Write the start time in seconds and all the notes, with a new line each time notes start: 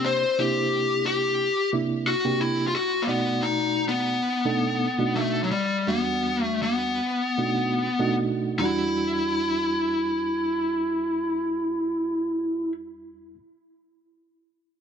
Already playing: C3 A#3 D4 G4
0.06 C5
0.38 C3 A#3 D4 E4 G4
1.06 G4
1.73 C3 A#3 D4 E4
2.07 F#4
2.25 C3 A#3 D4 G4
2.41 E4
2.67 F4
2.75 F#4
3.02 A#3
3.08 B2 A3 B3 D#4 F#4 D5
3.42 D#4
3.89 B3
4.45 B2 A3 D4 D#4 A4
4.99 B2 A3 D4 D#4 F#4
5.16 A3
5.44 F#3
5.51 G3
5.87 E2 G3 B3 D4 F#4
6.45 A3
6.62 B3
7.38 B2 A3 D4 D#4 F#4
7.99 B2 A3 D4 D#4 F#4
8.59 E2 G3 D4 E4
8.64 F#4